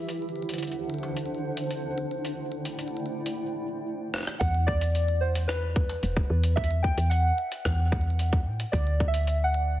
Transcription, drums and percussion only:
0.09 closed hi-hat soft
0.22 claves soft
0.29 claves soft
0.36 claves soft
0.42 claves soft
0.49 closed hi-hat medium
0.54 closed hi-hat soft
0.58 closed hi-hat soft
0.63 closed hi-hat soft
0.63 claves soft
0.67 closed hi-hat soft
0.72 closed hi-hat soft
0.90 claves medium
0.94 claves medium
0.99 claves soft
1.03 closed hi-hat medium
1.17 closed hi-hat soft
1.17 claves soft
1.26 claves soft
1.35 claves soft
1.57 closed hi-hat medium
1.57 claves soft
1.60 claves soft
1.64 claves soft
1.67 closed hi-hat soft
1.67 claves soft
1.71 claves soft
1.74 claves soft
1.77 claves soft
1.81 claves soft
1.98 claves medium
2.11 claves soft
2.25 closed hi-hat soft
2.52 claves soft
2.65 closed hi-hat medium
2.79 closed hi-hat soft
2.79 claves soft
2.88 claves soft
2.97 claves medium
3.06 claves soft
3.26 closed hi-hat medium
4.14 cross-stick medium
4.16 cross-stick medium
4.18 cross-stick soft
4.21 cross-stick soft
4.23 cross-stick soft
4.25 cross-stick soft
4.27 cross-stick medium
4.41 kick loud
4.41 closed hi-hat medium
4.54 claves medium
4.68 kick medium
4.81 closed hi-hat medium
4.81 claves medium
4.95 closed hi-hat medium
5.08 claves medium
5.35 closed hi-hat medium
5.49 cross-stick loud
5.49 closed hi-hat medium
5.49 claves medium
5.76 kick loud
5.76 claves medium
5.89 closed hi-hat medium
6.03 closed hi-hat medium
6.03 claves medium
6.17 kick loud
6.44 closed hi-hat medium
6.44 claves medium
6.57 kick loud
6.64 closed hi-hat medium
6.71 claves medium
6.84 kick medium
6.98 closed hi-hat medium
6.98 claves medium
7.11 closed hi-hat medium
7.38 claves medium
7.52 closed hi-hat medium
7.65 kick medium
7.65 cross-stick loud
7.65 closed hi-hat medium
7.65 claves medium
7.92 kick loud
7.92 claves soft
8.01 claves soft
8.10 claves soft
8.19 closed hi-hat medium
8.33 kick loud
8.33 claves medium
8.60 closed hi-hat medium
8.60 claves medium
8.73 kick loud
8.73 closed hi-hat medium
8.87 claves soft
9.00 kick medium
9.14 closed hi-hat medium
9.27 closed hi-hat medium
9.27 claves soft
9.54 claves medium

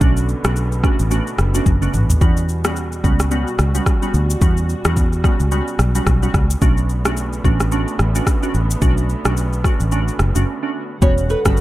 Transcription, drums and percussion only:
0.01 kick loud
0.01 shaker medium
0.17 shaker medium
0.29 shaker soft
0.44 cross-stick loud
0.44 shaker medium
0.56 shaker medium
0.72 shaker soft
0.84 kick medium
0.84 cross-stick medium
0.84 shaker soft
0.99 shaker medium
1.11 shaker medium
1.27 shaker soft
1.39 cross-stick medium
1.39 shaker soft
1.54 shaker medium
1.66 kick medium
1.66 high tom medium
1.66 shaker medium
1.82 mid tom medium
1.82 shaker medium
1.94 mid tom medium
1.94 shaker medium
2.10 floor tom medium
2.10 shaker loud
2.21 kick loud
2.21 shaker medium
2.37 shaker medium
2.49 shaker soft
2.64 cross-stick loud
2.64 shaker medium
2.76 shaker medium
2.92 shaker soft
3.04 kick medium
3.04 shaker soft
3.20 cross-stick medium
3.20 shaker medium
3.31 shaker medium
3.47 shaker soft
3.59 cross-stick medium
3.59 shaker medium
3.75 shaker medium
3.86 kick medium
3.86 cross-stick medium
3.86 shaker medium
4.02 shaker medium
4.14 shaker medium
4.30 shaker loud
4.41 kick loud
4.41 shaker medium
4.57 shaker medium
4.69 shaker soft
4.85 cross-stick loud
4.85 shaker medium
4.97 kick medium
4.97 shaker medium
5.13 shaker soft
5.24 kick medium
5.24 cross-stick medium
5.24 shaker soft
5.40 shaker medium
5.52 shaker medium
5.68 shaker soft
5.79 cross-stick medium
5.79 shaker medium
5.95 shaker medium
6.07 kick medium
6.07 cross-stick medium
6.07 shaker medium
6.23 shaker medium
6.34 kick medium
6.34 cross-stick medium
6.34 shaker medium
6.50 shaker loud
6.62 kick loud
6.62 shaker medium
6.77 shaker medium
6.89 shaker soft
7.05 cross-stick loud
7.05 shaker medium
7.17 shaker medium
7.33 shaker soft
7.45 kick medium
7.45 shaker soft
7.60 cross-stick medium
7.60 shaker medium
7.72 shaker medium
7.88 shaker soft
7.99 cross-stick medium
7.99 shaker soft
8.15 shaker medium
8.27 kick medium
8.27 cross-stick medium
8.27 shaker medium
8.43 shaker medium
8.54 shaker medium
8.71 shaker loud
8.82 kick loud
8.82 shaker medium
8.98 shaker medium
9.10 shaker soft
9.25 cross-stick loud
9.25 shaker medium
9.37 shaker medium
9.53 shaker soft
9.64 kick medium
9.64 cross-stick medium
9.64 shaker soft
9.80 shaker medium
9.92 shaker medium
10.08 shaker soft
10.19 cross-stick medium
10.19 shaker medium
10.35 shaker medium
11.02 kick loud
11.02 shaker medium
11.18 shaker medium
11.30 shaker medium
11.45 kick medium
11.45 cross-stick loud
11.45 shaker medium
11.57 shaker medium

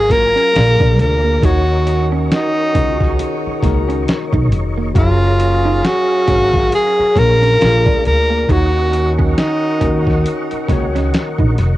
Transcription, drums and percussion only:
0.10 kick medium
0.10 snare soft
0.10 closed hi-hat medium
0.37 closed hi-hat soft
0.56 snare loud
0.56 closed hi-hat medium
0.80 kick loud
0.99 closed hi-hat medium
1.42 kick loud
1.42 closed hi-hat medium
1.87 closed hi-hat medium
2.32 snare loud
2.32 closed hi-hat medium
2.75 kick medium
2.75 closed hi-hat medium
3.01 kick medium
3.01 snare soft
3.19 closed hi-hat medium
3.63 kick medium
3.63 snare soft
3.63 closed hi-hat medium
3.90 closed hi-hat soft
4.08 snare loud
4.08 closed hi-hat medium
4.33 kick medium
4.52 closed hi-hat medium
4.95 kick loud
4.95 closed hi-hat medium
5.40 closed hi-hat medium
5.85 snare loud
5.85 closed hi-hat medium
6.28 kick medium
6.28 closed hi-hat medium
6.54 kick medium
6.54 snare soft
6.72 closed hi-hat medium
7.16 kick medium
7.16 snare soft
7.16 closed hi-hat medium
7.43 closed hi-hat soft
7.61 snare loud
7.61 closed hi-hat medium
7.86 kick loud
8.05 closed hi-hat medium
8.48 kick loud
8.48 closed hi-hat medium
8.93 closed hi-hat medium
9.19 kick medium
9.38 snare loud
9.38 closed hi-hat medium
9.81 kick medium
9.81 closed hi-hat medium
10.07 kick medium
10.07 snare soft
10.26 closed hi-hat medium
10.51 closed hi-hat soft
10.69 kick medium
10.69 snare soft
10.69 closed hi-hat medium
10.96 snare soft
10.96 closed hi-hat soft
11.14 snare loud
11.14 closed hi-hat medium
11.39 kick medium
11.58 snare soft
11.58 closed hi-hat medium

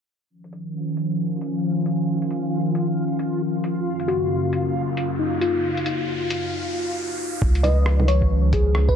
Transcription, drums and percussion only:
0.44 closed hi-hat soft
0.53 closed hi-hat medium
0.97 closed hi-hat medium
1.41 closed hi-hat medium
1.86 closed hi-hat medium
2.22 closed hi-hat soft
2.31 closed hi-hat medium
2.75 closed hi-hat medium
3.19 closed hi-hat medium
3.64 closed hi-hat medium
4.00 closed hi-hat soft
4.08 closed hi-hat medium
4.53 closed hi-hat medium
4.97 closed hi-hat medium
5.41 closed hi-hat medium
5.77 closed hi-hat soft
5.86 closed hi-hat soft
6.30 closed hi-hat medium
7.42 kick loud
7.55 closed hi-hat soft
7.64 closed hi-hat medium
7.64 low bongo medium
7.86 cross-stick loud
8.00 low bongo medium
8.08 closed hi-hat medium
8.22 kick medium
8.53 kick medium
8.53 closed hi-hat medium
8.75 cross-stick loud
8.89 kick loud

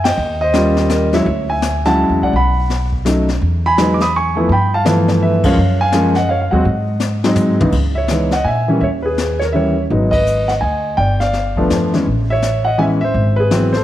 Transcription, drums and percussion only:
0.05 snare medium
0.05 ride medium
0.18 brush sweep soft
0.54 snare medium
0.54 hi-hat pedal medium
0.77 snare soft
0.90 snare medium
0.90 hi-hat pedal medium
1.13 snare soft
1.26 brush sweep soft
1.62 snare medium
1.62 hi-hat pedal medium
1.85 snare soft
2.34 brush sweep soft
2.70 snare soft
2.92 kick medium
3.06 snare medium
3.06 hi-hat pedal medium
3.29 snare soft
3.42 brush sweep soft
3.78 snare medium
3.78 hi-hat pedal medium
4.00 snare soft
4.50 brush sweep soft
4.85 snare medium
4.85 hi-hat pedal medium
5.08 snare soft
5.44 kick medium
5.44 crash medium
5.56 brush sweep soft
5.92 snare medium
5.92 hi-hat pedal medium
6.15 snare soft
6.65 brush sweep soft
7.00 snare medium
7.00 hi-hat pedal medium
7.24 snare medium
7.36 floor tom medium
7.36 hi-hat pedal medium
7.61 floor tom medium
7.72 brush sweep soft
7.72 kick medium
7.72 crash medium
8.08 snare medium
8.08 hi-hat pedal medium
8.31 snare soft
8.81 brush sweep soft
9.18 snare medium
9.18 hi-hat pedal medium
9.41 snare soft
9.90 brush sweep soft
10.12 kick medium
10.12 ride medium
10.26 hi-hat pedal soft
10.49 snare soft
10.98 brush sweep soft
11.21 snare soft
11.33 snare soft
11.56 kick medium
11.70 snare medium
11.70 hi-hat pedal medium
11.94 snare soft
12.07 brush sweep soft
12.42 snare medium
12.42 hi-hat pedal medium
13.14 brush sweep soft
13.51 snare medium
13.51 hi-hat pedal medium
13.74 snare soft

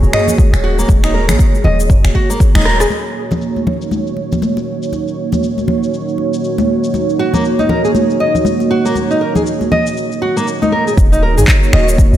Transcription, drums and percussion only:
0.03 shaker soft
0.13 finger snap medium
0.13 mid tom medium
0.13 muted conga soft
0.28 low conga medium
0.28 shaker medium
0.38 kick loud
0.38 high conga medium
0.38 shaker medium
0.54 finger snap medium
0.54 muted conga medium
0.54 shaker soft
0.79 shaker medium
0.88 kick loud
0.88 muted conga medium
0.88 high conga medium
0.88 shaker medium
1.04 finger snap medium
1.04 shaker soft
1.29 finger snap medium
1.29 muted conga soft
1.29 high conga medium
1.29 low conga loud
1.29 shaker medium
1.39 kick loud
1.39 shaker medium
1.54 high conga medium
1.54 shaker soft
1.64 muted conga medium
1.64 low conga loud
1.80 shaker medium
1.90 kick loud
1.90 mid tom medium
1.90 shaker medium
2.05 finger snap medium
2.05 shaker soft
2.15 kick medium
2.15 muted conga soft
2.30 shaker medium
2.40 kick loud
2.40 shaker medium
2.55 finger snap medium
2.55 muted conga medium
2.55 high conga medium
2.55 shaker soft
2.66 cross-stick medium
2.80 cross-stick medium
2.80 shaker medium
2.90 muted conga soft
2.90 high conga medium
2.90 shaker medium
3.06 shaker soft
3.31 muted conga soft
3.31 low conga loud
3.31 shaker medium
3.42 shaker medium
3.56 high conga medium
3.56 shaker soft
3.67 muted conga medium
3.67 low conga loud
3.82 shaker medium
3.91 high conga medium
3.91 shaker medium
4.07 shaker soft
4.17 muted conga soft
4.32 low conga loud
4.32 shaker medium
4.42 high conga medium
4.42 shaker medium
4.57 muted conga medium
4.57 shaker soft
4.83 shaker medium
4.92 muted conga soft
4.92 high conga medium
4.92 shaker medium
5.08 shaker soft
5.32 muted conga soft
5.32 high conga medium
5.32 low conga loud
5.32 shaker medium
5.43 shaker medium
5.58 high conga medium
5.58 shaker soft
5.68 muted conga medium
5.68 low conga loud
5.83 shaker medium
5.94 shaker medium
6.09 shaker soft
6.18 muted conga soft
6.34 shaker medium
6.44 shaker medium
6.58 muted conga medium
6.58 high conga loud
6.58 shaker soft
6.84 shaker medium
6.94 muted conga medium
6.94 high conga medium
6.94 shaker medium
7.09 shaker soft
7.34 muted conga soft
7.34 low conga loud
7.34 shaker medium
7.45 shaker medium
7.59 high conga medium
7.59 shaker soft
7.69 muted conga soft
7.69 low conga loud
7.85 shaker medium
7.95 high conga medium
7.95 shaker medium
8.10 shaker soft
8.20 muted conga soft
8.35 low conga medium
8.35 shaker medium
8.45 high conga loud
8.45 shaker medium
8.60 muted conga soft
8.60 shaker soft
8.86 shaker medium
8.96 muted conga soft
8.96 high conga medium
8.96 shaker medium
9.11 shaker soft
9.35 muted conga soft
9.35 high conga medium
9.35 low conga loud
9.35 shaker medium
9.46 shaker medium
9.61 high conga medium
9.61 shaker soft
9.72 muted conga medium
9.72 low conga loud
9.87 shaker medium
9.97 shaker medium
10.12 shaker soft
10.22 muted conga soft
10.37 shaker medium
10.48 shaker medium
10.62 muted conga soft
10.62 high conga loud
10.62 shaker soft
10.88 shaker medium
10.97 kick loud
10.97 shaker medium
11.13 shaker soft
11.38 mid tom medium
11.38 shaker medium
11.48 kick loud
11.48 clap loud
11.48 shaker medium
11.63 shaker soft
11.73 finger snap loud
11.89 shaker medium
11.98 kick loud
11.98 shaker medium
12.14 shaker soft

